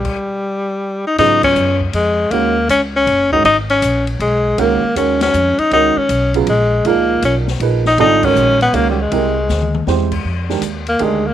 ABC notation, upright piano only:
X:1
M:3/4
L:1/8
Q:"Swing" 1/4=159
K:Gphr
V:1 name="Upright piano"
z6 | [K:G#dor] [C,F,B,EG]3 z3 | [D,G,CFA] z4 [D,G,CFA] | z6 |
[D,G,CFA] z [D,G,CFA]3 z | [D,G,CFA] z2 [C,F,B,EG] z2 | [A,,E,DGA]3 z [E,A,DGB] z | [=D,=G,^B,E=A] [^D,^G,CF^A]2 z [D,G,CFA] z |
[_A,=C=E=G_B] z3 [A,CEG=c] z | [K:Fdor] z [E,A,DGB] z2 [E,A,DGB] z |]